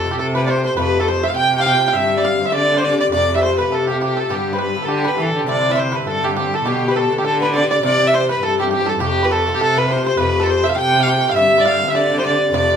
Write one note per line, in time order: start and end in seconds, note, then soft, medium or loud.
0.00 0.15 F2 medium
0.00 0.12 A4 medium
0.00 0.14 A4 loud
0.00 0.15 A4 medium
0.05 0.34 C3 medium
0.05 0.35 F3 medium
0.05 0.36 A3 medium
0.05 0.37 G4 medium
0.11 0.18 G4 medium
0.11 0.19 G4 medium
0.18 0.73 C3 loud
0.18 0.26 A4 loud
0.18 0.34 A4 medium
0.18 0.36 A4 medium
0.34 0.46 C3 medium
0.34 0.48 F3 medium
0.34 0.49 A3 medium
0.34 0.49 G4 medium
0.34 0.50 B4 medium
0.34 0.47 B4 medium
0.34 0.45 B4 medium
0.46 0.56 C3 medium
0.46 0.57 F3 medium
0.46 0.63 C5 medium
0.46 0.64 C5 medium
0.46 0.51 D5 medium
0.50 0.56 A3 medium
0.50 0.55 G4 medium
0.50 0.65 C5 loud
0.56 0.77 F3 soft
0.56 0.78 A3 soft
0.56 0.77 G4 soft
0.64 0.76 C5 medium
0.64 0.79 C5 medium
0.64 0.77 C5 medium
0.77 1.32 F2 medium
0.77 1.00 C3 medium
0.77 1.01 F3 medium
0.77 1.00 A3 medium
0.77 0.98 G4 medium
0.77 0.98 B4 medium
0.77 1.03 B4 medium
0.77 1.02 B4 loud
0.99 1.22 F3 soft
0.99 1.24 A3 medium
0.99 1.23 G4 soft
0.99 1.06 A4 medium
0.99 1.09 A4 loud
0.99 1.09 A4 medium
1.07 1.25 C5 loud
1.07 1.26 C5 loud
1.07 1.23 C5 medium
1.22 1.51 C3 medium
1.22 1.52 F3 medium
1.22 1.53 A3 medium
1.22 1.55 G4 medium
1.22 1.29 E5 loud
1.22 1.29 E5 medium
1.22 1.30 E5 medium
1.28 1.35 F5 medium
1.28 1.38 F5 medium
1.28 1.36 F5 medium
1.36 1.91 C3 loud
1.36 1.56 G5 loud
1.36 1.59 G5 medium
1.52 1.63 C3 medium
1.52 1.64 F3 medium
1.52 1.64 A3 medium
1.52 1.65 G4 medium
1.58 1.65 F5 medium
1.58 1.67 F5 loud
1.58 1.62 G5 medium
1.64 1.73 C3 medium
1.64 1.73 F3 medium
1.64 1.73 A3 medium
1.64 1.71 G4 medium
1.64 1.90 G5 medium
1.64 1.88 G5 loud
1.64 1.87 G5 medium
1.72 1.95 F3 soft
1.72 1.95 A3 soft
1.72 1.94 G4 soft
1.88 1.92 F5 medium
1.88 1.94 F5 medium
1.88 1.97 F5 medium
1.93 2.17 G2 medium
1.93 2.50 G2 loud
1.93 2.18 D3 medium
1.93 2.18 C4 medium
1.93 2.16 G4 medium
1.93 2.15 E5 medium
1.93 2.16 E5 medium
1.93 2.19 E5 loud
2.16 2.39 D3 medium
2.16 2.40 C4 medium
2.16 2.40 G4 soft
2.16 2.26 D5 medium
2.16 2.27 D5 loud
2.16 2.24 D5 medium
2.24 2.48 F5 medium
2.24 2.45 F5 medium
2.24 2.48 F5 loud
2.40 2.69 G2 medium
2.40 2.70 D3 medium
2.40 2.70 C4 medium
2.40 2.72 G4 medium
2.45 2.53 E5 medium
2.45 2.56 E5 medium
2.45 2.53 E5 medium
2.52 3.08 D3 loud
2.52 2.74 D5 medium
2.52 2.80 D5 loud
2.52 2.76 D5 medium
2.70 2.82 G2 medium
2.70 2.82 D3 medium
2.70 2.84 C4 medium
2.70 2.84 G4 medium
2.77 2.82 C5 medium
2.77 2.83 C5 medium
2.77 2.86 C5 loud
2.82 2.91 G2 medium
2.82 2.91 D3 medium
2.82 2.92 C4 medium
2.82 2.91 G4 medium
2.82 2.99 D5 medium
2.82 2.98 D5 medium
2.82 3.00 D5 loud
2.92 3.13 D3 soft
2.92 3.14 C4 soft
2.92 3.13 G4 medium
3.00 3.11 D5 medium
3.00 3.06 D5 medium
3.00 3.11 D5 medium
3.11 3.67 F2 medium
3.11 3.35 C3 medium
3.11 3.36 F3 medium
3.11 3.36 A3 medium
3.11 3.34 G4 medium
3.11 3.36 D5 loud
3.11 3.36 D5 medium
3.11 3.34 D5 loud
3.34 3.58 F3 soft
3.34 3.59 A3 soft
3.34 3.58 G4 medium
3.34 3.39 E5 medium
3.34 3.41 E5 medium
3.34 3.42 E5 loud
3.40 3.59 C5 medium
3.40 3.58 C5 medium
3.57 3.87 C3 medium
3.57 3.88 F3 medium
3.57 3.89 A3 medium
3.57 3.90 G4 medium
3.57 3.73 B4 medium
3.57 3.70 B4 medium
3.57 3.75 B4 medium
3.71 4.26 C3 medium
3.71 3.87 A4 medium
3.71 3.89 A4 medium
3.71 3.89 A4 loud
3.87 3.99 C3 medium
3.87 4.00 F3 medium
3.87 4.02 A3 medium
3.87 3.99 G4 medium
3.87 4.00 G4 medium
3.87 4.02 G4 medium
3.87 4.01 G4 medium
4.01 4.09 C3 medium
4.01 4.09 F3 soft
4.01 4.09 A3 medium
4.01 4.16 G4 medium
4.01 4.18 G4 medium
4.01 4.21 G4 medium
4.01 4.07 G4 medium
4.08 4.30 F3 soft
4.08 4.30 A3 soft
4.08 4.30 G4 soft
4.17 4.30 A4 medium
4.17 4.33 A4 medium
4.17 4.36 A4 medium
4.29 4.52 G2 medium
4.29 4.86 G2 loud
4.29 4.53 D3 medium
4.29 4.53 B3 medium
4.29 4.54 G4 medium
4.29 4.52 G4 medium
4.29 4.57 G4 medium
4.34 4.52 G4 medium
4.53 4.75 D3 soft
4.53 4.76 B3 soft
4.53 4.76 G4 medium
4.53 4.57 B4 medium
4.53 4.60 B4 medium
4.53 4.61 B4 medium
4.53 4.56 C5 medium
4.59 4.80 B4 medium
4.59 4.82 B4 medium
4.59 4.86 B4 medium
4.75 5.04 G2 medium
4.75 5.06 D3 medium
4.75 5.06 B3 medium
4.75 5.07 G4 medium
4.82 4.88 A4 medium
4.82 4.93 A4 medium
4.82 4.90 A4 medium
4.88 5.16 D3 loud
4.88 5.04 G4 medium
4.88 5.05 G4 medium
4.88 5.09 G4 loud
5.04 5.17 G2 medium
5.04 5.18 D3 medium
5.04 5.19 B3 medium
5.04 5.19 G4 medium
5.04 5.17 B4 medium
5.04 5.22 B4 medium
5.04 5.23 B4 medium
5.18 5.27 G2 medium
5.18 5.27 D3 medium
5.18 5.33 E3 medium
5.18 5.27 B3 medium
5.18 5.25 G4 medium
5.18 5.45 A4 medium
5.18 5.37 A4 medium
5.18 5.40 A4 loud
5.27 5.46 D3 soft
5.27 5.48 B3 soft
5.27 5.48 G4 medium
5.34 5.46 D3 medium
5.34 5.47 G4 medium
5.38 5.48 G4 medium
5.46 5.70 G2 medium
5.46 6.02 C3 medium
5.46 5.70 D3 medium
5.46 5.69 C4 medium
5.46 5.68 E4 medium
5.46 5.79 D5 medium
5.46 5.73 D5 loud
5.46 5.71 D5 medium
5.69 5.92 D3 soft
5.69 5.92 C4 soft
5.69 5.93 E4 medium
5.69 5.81 E5 medium
5.69 5.77 E5 medium
5.75 5.92 C5 medium
5.75 5.97 C5 medium
5.92 6.20 G2 medium
5.92 6.22 D3 medium
5.92 6.22 C4 medium
5.92 6.23 E4 medium
5.92 6.06 B4 medium
5.92 6.10 B4 medium
5.92 6.07 B4 medium
6.07 6.62 G2 loud
6.07 6.24 A4 medium
6.07 6.25 A4 loud
6.07 6.25 A4 medium
6.22 6.35 G2 medium
6.22 6.36 D3 medium
6.22 6.36 C4 medium
6.22 6.37 E4 medium
6.22 6.36 G4 medium
6.22 6.35 G4 medium
6.36 6.44 G2 medium
6.36 6.45 D3 medium
6.36 6.45 C4 medium
6.36 6.43 E4 medium
6.36 6.52 G4 medium
6.36 6.56 G4 medium
6.44 6.65 D3 soft
6.44 6.66 C4 soft
6.44 6.65 E4 soft
6.54 6.65 A4 medium
6.54 6.68 A4 medium
6.54 6.69 A4 medium
6.64 6.89 A2 medium
6.64 7.20 B2 medium
6.64 6.89 D3 medium
6.64 6.89 B3 medium
6.64 6.89 G4 medium
6.64 6.92 G4 medium
6.64 6.87 G4 medium
6.87 7.10 D3 soft
6.87 7.11 B3 medium
6.87 7.11 G4 medium
6.87 6.94 B4 medium
6.87 6.98 B4 medium
6.87 6.97 B4 medium
6.87 6.91 C5 medium
6.96 7.18 A4 medium
6.96 7.17 A4 medium
6.96 7.20 A4 medium
7.10 7.39 A2 medium
7.10 7.40 D3 medium
7.10 7.41 B3 medium
7.10 7.43 G4 medium
7.18 7.24 G4 medium
7.18 7.25 G4 medium
7.18 7.24 G4 medium
7.25 7.79 D3 loud
7.25 7.41 A4 medium
7.25 7.40 A4 loud
7.25 7.42 A4 medium
7.40 7.52 A2 medium
7.40 7.54 D3 medium
7.40 7.54 B3 medium
7.40 7.55 G4 medium
7.40 7.54 B4 medium
7.40 7.53 B4 medium
7.40 7.54 B4 medium
7.54 7.62 A2 medium
7.54 7.63 D3 medium
7.54 7.63 B3 medium
7.54 7.61 G4 medium
7.54 7.69 D5 loud
7.54 7.69 D5 medium
7.54 7.70 D5 medium
7.62 7.83 D3 soft
7.62 7.84 B3 medium
7.62 7.83 G4 medium
7.70 7.82 D5 medium
7.70 7.83 D5 medium
7.83 8.06 G2 medium
7.83 8.38 C3 medium
7.83 8.06 E3 medium
7.83 8.07 C4 medium
7.83 8.05 G4 medium
7.83 8.14 D5 medium
7.83 8.09 D5 loud
7.83 8.05 D5 loud
8.06 8.28 E3 soft
8.06 8.29 C4 soft
8.06 8.29 G4 medium
8.06 8.12 E5 medium
8.06 8.16 E5 loud
8.13 8.28 C5 medium
8.13 8.29 C5 medium
8.13 8.30 C5 loud
8.29 8.57 G2 medium
8.29 8.58 E3 medium
8.29 8.60 C4 medium
8.29 8.61 G4 medium
8.29 8.41 B4 medium
8.29 8.42 B4 medium
8.29 8.45 B4 medium
8.42 8.97 G2 loud
8.42 8.58 A4 medium
8.42 8.59 A4 loud
8.42 8.58 A4 medium
8.59 8.70 G2 medium
8.59 8.71 E3 medium
8.59 8.71 C4 medium
8.59 8.71 G4 medium
8.59 8.70 G4 medium
8.59 8.73 G4 medium
8.71 8.80 G2 medium
8.71 8.80 E3 medium
8.71 8.80 C4 medium
8.71 8.88 G4 medium
8.71 8.90 G4 loud
8.71 8.88 G4 medium
8.71 8.78 G4 medium
8.79 9.00 E3 soft
8.79 9.00 C4 soft
8.79 9.00 G4 medium
8.86 8.99 A4 medium
8.86 9.00 A4 medium
8.86 9.01 A4 medium
8.99 9.56 F2 medium
8.99 9.23 C3 medium
8.99 9.24 F3 medium
8.99 9.23 A3 medium
8.99 9.22 G4 medium
8.99 9.26 G4 medium
8.99 9.21 G4 loud
8.99 9.26 G4 loud
9.23 9.46 F3 soft
9.23 9.46 A3 medium
9.23 9.46 G4 medium
9.23 9.29 B4 medium
9.23 9.32 B4 medium
9.23 9.33 B4 loud
9.30 9.53 A4 medium
9.30 9.54 A4 medium
9.30 9.57 A4 loud
9.46 9.73 C3 medium
9.46 9.74 F3 medium
9.46 9.75 A3 medium
9.46 9.77 G4 medium
9.54 9.61 G4 medium
9.60 10.15 C3 loud
9.60 9.75 A4 medium
9.60 9.76 A4 medium
9.60 9.79 A4 loud
9.75 9.86 C3 medium
9.75 9.87 F3 medium
9.75 9.88 A3 medium
9.75 9.89 G4 medium
9.75 9.91 B4 medium
9.75 9.93 B4 medium
9.75 9.89 B4 medium
9.87 9.97 C3 medium
9.87 9.97 F3 medium
9.87 9.97 A3 medium
9.87 9.95 G4 medium
9.87 10.21 C5 medium
9.87 10.05 C5 medium
9.92 10.07 C5 loud
9.96 10.18 F3 soft
9.96 10.19 A3 soft
9.96 10.18 G4 soft
10.06 10.17 C5 medium
10.06 10.18 C5 medium
10.17 10.74 F2 medium
10.17 10.42 C3 medium
10.17 10.42 F3 medium
10.17 10.42 A3 medium
10.17 10.40 G4 medium
10.17 10.39 B4 medium
10.17 10.44 B4 loud
10.17 10.43 B4 medium
10.40 10.65 A3 soft
10.40 10.64 G4 medium
10.40 10.47 A4 medium
10.40 10.49 A4 medium
10.40 10.52 A4 loud
10.44 10.64 F3 soft
10.44 10.62 C5 medium
10.44 10.67 C5 medium
10.50 10.68 C5 loud
10.64 10.93 C3 medium
10.64 10.94 F3 medium
10.64 10.94 A3 medium
10.64 10.97 G4 medium
10.64 10.69 E5 medium
10.64 10.72 E5 medium
10.64 10.75 E5 medium
10.69 10.75 F5 medium
10.69 10.79 F5 medium
10.76 11.32 C3 loud
10.76 10.98 G5 medium
10.76 11.02 G5 medium
10.76 11.04 G5 loud
10.94 11.06 C3 medium
10.94 11.07 F3 medium
10.94 11.08 A3 medium
10.94 11.09 G4 medium
11.00 11.07 F5 medium
11.00 11.06 F5 medium
11.00 11.11 F5 loud
11.05 11.15 C3 medium
11.05 11.16 F3 medium
11.05 11.30 G5 medium
11.05 11.28 G5 medium
11.09 11.16 A3 medium
11.09 11.15 G4 medium
11.09 11.32 G5 loud
11.16 11.37 F3 soft
11.16 11.37 A3 soft
11.16 11.37 G4 soft
11.29 11.35 F5 loud
11.29 11.36 F5 medium
11.35 11.91 G2 loud
11.35 11.59 G2 medium
11.35 11.60 D3 medium
11.35 11.59 C4 medium
11.35 11.58 G4 medium
11.35 11.61 E5 loud
11.35 11.58 E5 loud
11.35 11.62 E5 loud
11.58 11.81 D3 soft
11.58 11.81 C4 soft
11.58 11.82 G4 soft
11.58 11.65 D5 medium
11.58 11.67 D5 medium
11.58 11.68 D5 loud
11.65 11.72 F5 medium
11.65 11.87 F5 loud
11.65 11.91 F5 loud
11.71 11.79 G5 medium
11.77 11.88 F5 medium
11.82 12.09 G2 medium
11.82 12.10 D3 medium
11.82 12.12 C4 medium
11.82 12.13 G4 medium
11.88 11.94 E5 medium
11.88 11.97 E5 loud
11.88 11.97 E5 medium
11.94 12.49 D3 loud
11.94 12.16 D5 medium
11.94 12.21 D5 medium
11.94 12.19 D5 loud
12.10 12.22 G2 medium
12.10 12.23 D3 medium
12.10 12.24 C4 medium
12.10 12.25 G4 medium
12.19 12.24 C5 medium
12.19 12.25 C5 loud
12.19 12.26 C5 medium
12.24 12.32 G2 medium
12.24 12.33 D3 medium
12.24 12.32 C4 medium
12.24 12.31 G4 medium
12.24 12.53 D5 medium
12.24 12.52 D5 medium
12.24 12.52 D5 loud
12.32 12.53 D3 soft
12.32 12.54 C4 soft
12.32 12.53 G4 medium
12.52 12.77 F2 medium
12.52 12.76 C3 medium
12.52 12.77 F3 medium
12.52 12.76 A3 medium
12.52 12.75 G4 medium
12.52 12.77 D5 loud
12.52 12.75 D5 loud
12.57 12.77 D5 loud